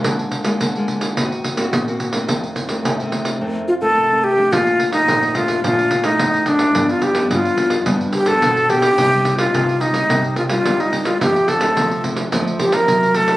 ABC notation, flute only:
X:1
M:4/4
L:1/16
Q:1/4=108
K:Bb
V:1 name="Flute"
z16 | z8 z2 F A3 G2 | F3 E3 F2 F3 E3 D2- | D F G2 F4 z2 G A3 G2- |
G3 F3 E4 F F2 E2 F | G2 A4 z4 G B3 A2 |]